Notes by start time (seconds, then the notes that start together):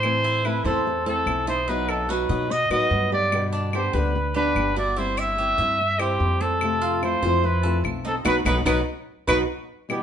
Already playing: A2 E4 A4 C5
0.03 E3 A3 C4 E4, claves
0.24 E4
0.45 E3 A3 C4 E4 B4, claves
0.64 E2 A3 C4 E4 A4 C5
0.87 muted nylon-string guitar stroke
1.06 A3 C4 E4 A4
1.26 B1 E3 A3 C4 E4, claves
1.47 D#4 E4 C5
1.68 B2 F#3 B3 D#4 F#4 B4
1.89 C4 A4, claves
2.09 F#3 B3 D#4 F#4 B4
2.29 B2 F#3 B3 D#4 F#4 D#5
2.50 F#4 D#5, muted nylon-string guitar stroke
2.70 A2 F#3 B3 D#4 F#4 B4 D#5, claves
2.91 G2 F#3 B3 D#4 F#4
3.12 G4 D5
3.32 B2 D3 G3 B3 G4, claves
3.53 D4
3.73 D3 G3 B3 G4 C5, claves
3.93 D2 D3 G3 B3 D4 G4 B4
4.15 muted nylon-string guitar stroke
4.34 D3 G3 B3 D4 G4 B4
4.55 G1 D3 G3 B3, claves
4.60 G4
4.76 E4 F#4 D5
4.96 G3 C4 E4 C5
5.17 G4 E5, claves
5.38 G3 C4 E4 G4
5.58 G2 C4 E4 E5
5.80 muted nylon-string guitar stroke
5.99 C4 E4 G4 C5, claves
6.20 F2 G3 C4 E4
6.41 C4 A4
6.61 C3 A3 C4 F4, claves
6.82 F4
7.02 E3 A3 C4 E4 F4 C5, claves
7.23 F2 E3 A3 C4 F4 C5
7.43 E4 B4, muted nylon-string guitar stroke
7.63 E3 A3 C4 F4 A4
7.84 B1 A3 C4 F4, claves
8.05 C4 D#4 A4
8.25 B1 F#3 B3 D#4 F#4 B4, claves
8.45 B1 F#3 B3 D#4 F#4 B4, claves
8.65 B1 F#3 B3 D#4 F#4 B4, claves
9.27 B1 F#3 B3 D#4 F#4 B4, claves
9.89 B2 E3 G3 B3 E4 G4, claves